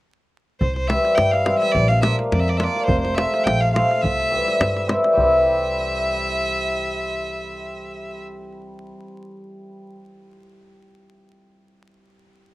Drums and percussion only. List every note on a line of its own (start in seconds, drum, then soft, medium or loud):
0.61 davul low medium
0.76 davul high soft
0.90 davul high medium
1.05 davul high soft
1.18 davul high medium
1.33 davul high soft
1.46 davul high medium
1.62 davul high soft
1.75 davul low medium
1.90 davul high soft
2.03 davul high medium
2.19 davul high soft
2.32 davul high medium
2.48 davul high soft
2.60 davul high medium
2.76 davul high soft
2.88 davul low medium
3.05 davul high soft
3.18 davul high medium
3.34 davul high soft
3.47 davul high medium
3.62 davul high soft
3.76 davul high medium
3.91 davul high soft
4.04 davul low medium
4.20 davul high soft
4.48 davul high soft
4.61 davul high medium
4.77 davul high soft
4.89 davul high medium
5.04 davul high soft
5.17 davul low medium